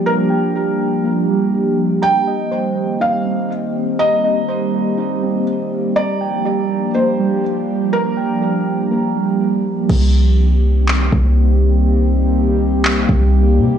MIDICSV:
0, 0, Header, 1, 6, 480
1, 0, Start_track
1, 0, Key_signature, -3, "minor"
1, 0, Tempo, 491803
1, 57, Time_signature, 4, 2, 24, 8
1, 13454, End_track
2, 0, Start_track
2, 0, Title_t, "Felt piano"
2, 0, Program_c, 0, 0
2, 61, Note_on_c, 0, 70, 93
2, 1940, Note_off_c, 0, 70, 0
2, 1978, Note_on_c, 0, 79, 105
2, 2898, Note_off_c, 0, 79, 0
2, 2940, Note_on_c, 0, 77, 79
2, 3390, Note_off_c, 0, 77, 0
2, 3896, Note_on_c, 0, 75, 94
2, 5297, Note_off_c, 0, 75, 0
2, 5817, Note_on_c, 0, 74, 97
2, 6738, Note_off_c, 0, 74, 0
2, 6779, Note_on_c, 0, 72, 73
2, 7229, Note_off_c, 0, 72, 0
2, 7739, Note_on_c, 0, 70, 96
2, 9619, Note_off_c, 0, 70, 0
2, 13454, End_track
3, 0, Start_track
3, 0, Title_t, "Synth keys"
3, 0, Program_c, 1, 88
3, 0, Note_on_c, 1, 55, 67
3, 0, Note_on_c, 1, 58, 85
3, 58, Note_on_c, 1, 82, 101
3, 292, Note_on_c, 1, 79, 81
3, 536, Note_on_c, 1, 67, 77
3, 540, Note_off_c, 1, 58, 0
3, 780, Note_off_c, 1, 55, 0
3, 1015, Note_on_c, 1, 58, 88
3, 1259, Note_on_c, 1, 55, 70
3, 1497, Note_off_c, 1, 82, 0
3, 1734, Note_off_c, 1, 79, 0
3, 1971, Note_on_c, 1, 82, 92
3, 1976, Note_off_c, 1, 58, 0
3, 1976, Note_off_c, 1, 67, 0
3, 1978, Note_off_c, 1, 55, 0
3, 2219, Note_on_c, 1, 75, 87
3, 2453, Note_on_c, 1, 72, 82
3, 2934, Note_on_c, 1, 63, 95
3, 3175, Note_on_c, 1, 60, 76
3, 3414, Note_off_c, 1, 82, 0
3, 3658, Note_off_c, 1, 75, 0
3, 3895, Note_off_c, 1, 72, 0
3, 3900, Note_on_c, 1, 82, 96
3, 4140, Note_on_c, 1, 75, 81
3, 4375, Note_off_c, 1, 63, 0
3, 4377, Note_on_c, 1, 72, 89
3, 4616, Note_off_c, 1, 60, 0
3, 4857, Note_on_c, 1, 63, 91
3, 5103, Note_on_c, 1, 60, 76
3, 5338, Note_off_c, 1, 82, 0
3, 5578, Note_off_c, 1, 75, 0
3, 5817, Note_off_c, 1, 63, 0
3, 5817, Note_off_c, 1, 72, 0
3, 5820, Note_off_c, 1, 60, 0
3, 5820, Note_on_c, 1, 82, 99
3, 6059, Note_on_c, 1, 79, 87
3, 6297, Note_on_c, 1, 67, 82
3, 6784, Note_on_c, 1, 58, 87
3, 7022, Note_on_c, 1, 55, 70
3, 7258, Note_off_c, 1, 82, 0
3, 7498, Note_off_c, 1, 79, 0
3, 7737, Note_off_c, 1, 67, 0
3, 7739, Note_on_c, 1, 82, 105
3, 7973, Note_on_c, 1, 79, 83
3, 8217, Note_on_c, 1, 67, 83
3, 8220, Note_off_c, 1, 58, 0
3, 8459, Note_off_c, 1, 55, 0
3, 8696, Note_on_c, 1, 58, 89
3, 8940, Note_on_c, 1, 55, 71
3, 9178, Note_off_c, 1, 82, 0
3, 9415, Note_off_c, 1, 79, 0
3, 9656, Note_off_c, 1, 58, 0
3, 9657, Note_off_c, 1, 67, 0
3, 9658, Note_off_c, 1, 55, 0
3, 13454, End_track
4, 0, Start_track
4, 0, Title_t, "Ambient pad"
4, 0, Program_c, 2, 92
4, 0, Note_on_c, 2, 53, 78
4, 0, Note_on_c, 2, 55, 76
4, 0, Note_on_c, 2, 58, 70
4, 0, Note_on_c, 2, 62, 73
4, 0, Note_on_c, 2, 67, 85
4, 1938, Note_off_c, 2, 53, 0
4, 1939, Note_off_c, 2, 55, 0
4, 1939, Note_off_c, 2, 62, 0
4, 1974, Note_on_c, 2, 60, 72
4, 1975, Note_on_c, 2, 51, 79
4, 1975, Note_on_c, 2, 55, 75
4, 5777, Note_off_c, 2, 51, 0
4, 5777, Note_off_c, 2, 60, 0
4, 5779, Note_off_c, 2, 67, 0
4, 5818, Note_on_c, 2, 62, 72
4, 5819, Note_on_c, 2, 53, 84
4, 5819, Note_on_c, 2, 67, 87
4, 9617, Note_off_c, 2, 55, 0
4, 9618, Note_off_c, 2, 58, 0
4, 9619, Note_off_c, 2, 53, 0
4, 9619, Note_off_c, 2, 62, 0
4, 9619, Note_off_c, 2, 67, 0
4, 9658, Note_on_c, 2, 55, 73
4, 9658, Note_on_c, 2, 58, 77
4, 9658, Note_on_c, 2, 60, 72
4, 9659, Note_on_c, 2, 51, 81
4, 9659, Note_on_c, 2, 67, 92
4, 13454, Note_off_c, 2, 51, 0
4, 13454, Note_off_c, 2, 55, 0
4, 13454, Note_off_c, 2, 58, 0
4, 13454, Note_off_c, 2, 60, 0
4, 13454, Note_off_c, 2, 67, 0
4, 13454, End_track
5, 0, Start_track
5, 0, Title_t, "808-style bass"
5, 0, Program_c, 3, 38
5, 9658, Note_on_c, 3, 36, 114
5, 10818, Note_off_c, 3, 36, 0
5, 10857, Note_on_c, 3, 36, 103
5, 12738, Note_off_c, 3, 36, 0
5, 12777, Note_on_c, 3, 36, 106
5, 13256, Note_on_c, 3, 48, 96
5, 13271, Note_off_c, 3, 36, 0
5, 13454, Note_off_c, 3, 48, 0
5, 13454, End_track
6, 0, Start_track
6, 0, Title_t, "Drums"
6, 9658, Note_on_c, 9, 36, 127
6, 9658, Note_on_c, 9, 49, 100
6, 9755, Note_off_c, 9, 36, 0
6, 9755, Note_off_c, 9, 49, 0
6, 10622, Note_on_c, 9, 39, 101
6, 10720, Note_off_c, 9, 39, 0
6, 10857, Note_on_c, 9, 36, 92
6, 10955, Note_off_c, 9, 36, 0
6, 12542, Note_on_c, 9, 39, 106
6, 12639, Note_off_c, 9, 39, 0
6, 12777, Note_on_c, 9, 36, 91
6, 12874, Note_off_c, 9, 36, 0
6, 13454, End_track
0, 0, End_of_file